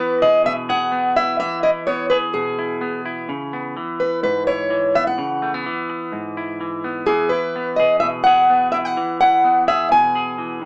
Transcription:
0.00 1.39 E3 medium
0.00 0.91 B3 medium
0.00 1.16 E4 medium
0.00 0.19 B4 medium
0.22 0.69 G#4 medium
0.22 0.46 D#5 medium
0.44 1.39 B2 medium
0.44 0.52 E5 loud
0.69 2.11 G#4 medium
0.69 1.16 F#5 loud
0.92 1.87 B3 medium
1.16 1.63 E4 medium
1.16 1.39 E5 medium
1.40 3.76 E3 medium
1.40 1.62 E5 loud
1.63 2.58 E4 medium
1.63 1.70 D#5 medium
1.87 2.81 B3 medium
1.87 2.09 C#5 medium
2.10 5.45 G#4 medium
2.10 2.16 B4 medium
2.34 3.29 B2 medium
2.34 3.01 G#4 medium
2.59 3.05 E4 medium
2.81 3.32 B3 medium
3.05 4.47 E4 medium
3.29 3.76 C#3 medium
3.53 4.95 B3 medium
3.77 4.70 E3 medium
4.00 4.22 B4 medium
4.23 5.15 G#2 medium
4.23 4.45 B4 medium
4.47 6.37 E4 medium
4.47 4.96 C#5 medium
4.70 5.66 E3 medium
4.95 5.21 B3 medium
4.95 5.07 E5 medium
5.07 5.51 F#5 medium
5.18 5.65 C#3 medium
5.42 5.54 A3 medium
5.54 6.83 B3 soft
5.66 6.60 E3 medium
5.90 muted clean electric guitar stroke medium
6.12 7.04 G#2 medium
6.37 7.09 E4 medium
6.61 7.07 E3 medium
6.84 7.08 B3 medium
7.07 8.97 E3 medium
7.07 7.55 B3 medium
7.07 7.29 G#4 medium
7.07 muted clean electric guitar stroke soft
7.29 8.74 E4 medium
7.29 7.79 B4 medium
7.56 8.49 B3 medium
7.76 8.26 G#4 medium
7.76 7.99 D#5 medium
8.00 8.97 B2 medium
8.00 8.07 E5 medium
8.24 9.68 G#4 medium
8.24 8.68 F#5 medium
8.50 9.44 B3 medium
8.72 9.21 E4 medium
8.72 8.77 E5 medium
8.85 9.19 F#5 medium
8.97 10.37 E3 medium
9.21 10.65 E4 medium
9.21 9.68 F#5 loud
9.44 10.65 B3 medium
9.68 10.15 G#4 medium
9.68 9.91 E5 medium
9.91 10.61 B2 medium
9.91 10.58 G#5 medium
10.15 10.65 G#4 medium
10.38 10.62 E3 medium
10.62 10.65 D#3 medium

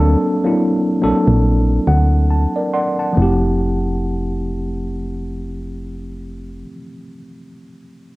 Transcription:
0.00 0.16 D2 loud
0.00 0.29 F#3 medium
0.00 0.29 A#3 medium
0.00 0.29 C4 medium
0.00 0.30 D4 medium
0.00 0.30 A4 loud
0.44 0.91 F#3 medium
0.44 0.92 A#3 medium
0.44 0.92 C4 medium
0.44 0.92 D4 medium
0.44 0.93 E4 medium
1.01 1.13 A#1 soft
1.01 1.71 F#3 medium
1.01 1.71 A#3 medium
1.01 1.71 C4 medium
1.01 1.72 D4 medium
1.01 1.72 A4 medium
1.28 1.80 A#1 medium
1.87 2.47 D2 medium
1.87 2.27 F#5 medium
2.31 2.71 A5 medium
2.56 2.73 A#4 soft
2.56 2.73 D5 medium
2.74 2.98 D5 medium
2.74 2.98 F#5 medium
2.74 3.15 C6 medium
2.99 3.42 F#5 soft
2.99 3.41 A5 medium
3.13 6.59 F3 medium
3.13 6.61 A3 medium
3.17 6.64 F1 medium
3.17 6.64 C4 medium
3.17 6.66 E4 medium
3.22 6.69 G4 medium

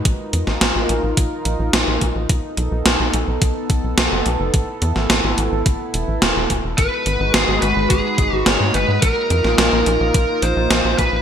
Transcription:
0.00 4.50 D#4 medium
0.05 0.17 A#1 loud
0.05 2.27 F4 medium
0.05 2.27 A#4 medium
0.05 kick loud
0.05 closed hi-hat medium
0.33 0.45 F2 medium
0.33 closed hi-hat medium
0.47 0.59 A#1 medium
0.47 snare soft
0.61 0.73 A#1 loud
0.61 snare loud
0.61 closed hi-hat medium
0.75 0.87 A#1 medium
0.89 1.01 A#1 medium
0.89 closed hi-hat medium
1.03 1.15 A#1 medium
1.17 1.29 A#1 loud
1.17 kick loud
1.17 closed hi-hat medium
1.45 1.57 A#1 medium
1.45 closed hi-hat medium
1.59 1.71 A#1 medium
1.73 1.85 A#1 medium
1.73 snare loud
1.73 closed hi-hat medium
1.87 1.99 A#1 medium
2.01 2.13 A#1 medium
2.01 kick medium
2.01 closed hi-hat medium
2.15 2.27 A#1 medium
2.29 2.41 B1 loud
2.29 6.74 B3 medium
2.29 6.74 A4 medium
2.29 kick loud
2.29 closed hi-hat medium
2.57 2.69 B1 medium
2.57 closed hi-hat medium
2.72 2.83 B1 medium
2.86 2.97 B1 loud
2.86 snare loud
2.86 closed hi-hat medium
3.00 3.11 B1 medium
3.14 3.25 B1 medium
3.14 closed hi-hat medium
3.28 3.39 B1 medium
3.42 3.53 B1 loud
3.42 kick loud
3.42 closed hi-hat medium
3.70 3.81 B1 medium
3.70 kick loud
3.70 closed hi-hat medium
3.84 3.95 B1 medium
3.98 4.09 B1 medium
3.98 snare loud
3.98 closed hi-hat medium
4.12 4.23 F#1 medium
4.26 4.37 B1 medium
4.26 closed hi-hat medium
4.40 4.51 F#1 medium
4.54 4.65 A1 loud
4.54 6.76 E4 medium
4.54 kick loud
4.54 closed hi-hat medium
4.82 4.93 E2 medium
4.82 closed hi-hat medium
4.96 5.07 A1 medium
4.96 snare soft
5.10 5.21 A1 loud
5.10 snare loud
5.10 closed hi-hat medium
5.24 5.35 A1 medium
5.38 5.49 A1 medium
5.38 closed hi-hat medium
5.52 5.63 A1 medium
5.66 5.77 A1 loud
5.66 kick loud
5.66 closed hi-hat medium
5.94 6.05 E1 medium
5.94 closed hi-hat medium
6.08 6.19 A1 medium
6.22 6.33 E1 medium
6.22 snare loud
6.22 closed hi-hat medium
6.36 6.47 E1 medium
6.50 6.61 E1 medium
6.50 kick medium
6.50 closed hi-hat medium
6.64 6.75 E1 medium
6.78 6.89 G#1 loud
6.78 9.00 G#3 medium
6.78 11.22 D#4 medium
6.78 9.00 F#4 medium
6.78 7.30 B4 loud
6.78 9.00 B4 medium
6.78 kick loud
6.78 closed hi-hat medium
7.06 7.17 G#1 medium
7.06 closed hi-hat medium
7.20 7.31 G#1 medium
7.34 7.45 G#1 loud
7.34 7.62 G#4 medium
7.34 snare loud
7.34 closed hi-hat medium
7.48 7.59 G#1 medium
7.62 7.73 G#1 medium
7.62 7.88 B4 loud
7.62 closed hi-hat medium
7.76 7.88 G#1 medium
7.90 8.02 G#1 loud
7.90 8.35 G#4 medium
7.90 kick loud
7.90 closed hi-hat medium
8.18 8.30 G#1 loud
8.18 kick loud
8.18 closed hi-hat medium
8.32 8.44 G#1 medium
8.32 8.48 F#4 medium
8.46 8.58 G#1 medium
8.46 8.75 C#5 loud
8.46 snare loud
8.46 closed hi-hat medium
8.60 8.72 G#2 medium
8.74 8.86 G#1 medium
8.74 9.00 B4 medium
8.74 closed hi-hat medium
8.88 9.00 G#2 medium
9.02 9.14 A#1 loud
9.02 11.22 A#3 medium
9.02 11.22 F4 medium
9.02 9.54 A#4 loud
9.02 kick loud
9.02 closed hi-hat medium
9.30 9.42 F2 medium
9.30 closed hi-hat medium
9.44 9.56 A#1 medium
9.44 snare soft
9.58 9.70 A#1 loud
9.58 10.45 A#4 medium
9.58 snare loud
9.58 closed hi-hat medium
9.72 9.84 A#1 medium
9.86 9.98 A#1 medium
9.86 closed hi-hat medium
10.00 10.12 A#1 medium
10.14 10.26 A#1 loud
10.14 kick loud
10.14 closed hi-hat medium
10.42 10.54 A#1 medium
10.42 11.00 C5 loud
10.42 closed hi-hat medium
10.56 10.68 A#1 medium
10.70 10.82 A#1 loud
10.70 snare loud
10.70 closed hi-hat medium
10.85 10.96 A#1 medium
10.98 11.10 A#1 medium
10.98 11.22 B4 loud
10.98 kick medium
10.98 closed hi-hat medium
11.13 11.22 A#1 medium

